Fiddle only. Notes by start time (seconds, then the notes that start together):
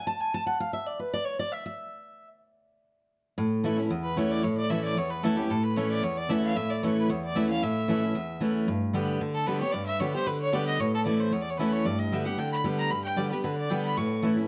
4.03 B4
4.17 C#5
4.31 D5
4.43 C#5
4.57 D5
4.70 E5
4.84 D5
4.98 C#5
5.10 B4
5.23 A4
5.37 G4
5.50 A4
5.64 B4
5.76 C#5
5.90 D5
6.03 C#5
6.17 D5
6.30 E5
6.44 F5
6.56 E5
6.70 D5
6.83 C#5
6.98 B4
7.10 C#5
7.24 D5
7.36 E5
7.49 F5
7.63 E5
9.34 A4
9.47 B4
9.60 C#5
9.72 D5
9.86 E5
10.00 C#5
10.14 C5
10.27 B4
10.41 C#5
10.53 D5
10.66 D#5
10.80 C#5
10.94 A4
11.05 D5
11.20 C5
11.32 C#5
11.42 D5
11.50 C#5
11.57 B4
11.72 C#5
11.85 D5
11.99 D#5
12.13 E5
12.25 F#5
12.39 G5
12.52 B5
12.78 A#5
12.90 B5
13.04 G5
13.17 D5
13.31 B4
13.43 B4
13.57 D5
13.70 G5
13.85 B5
13.97 C#6